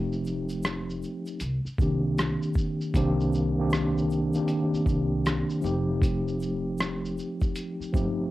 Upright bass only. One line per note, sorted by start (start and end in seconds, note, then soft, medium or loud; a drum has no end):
0.00 1.01 F1 medium
1.41 1.61 C2 medium
1.65 muted upright bass stroke soft
1.79 2.32 C2 medium
2.94 4.30 C2 loud
4.73 muted upright bass stroke soft
4.86 5.40 C2 medium
5.64 7.16 F1 medium
7.80 muted upright bass stroke soft
7.94 8.31 G1 medium